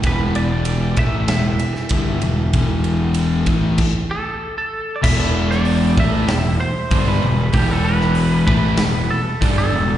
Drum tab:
CC |----------------|--------x-------|x---------------|----------------|
RD |x-x-x-x-x-x-x-x-|x-x-x-x---------|----------------|----------------|
HH |----------------|----------------|----o---o---o---|o---o---o---o---|
SD |--------o--o----|----------------|---o----o-------|---o----o-------|
BD |o-----o-----o---|o-----o-o-------|o-----o-----o---|o-----o-----o---|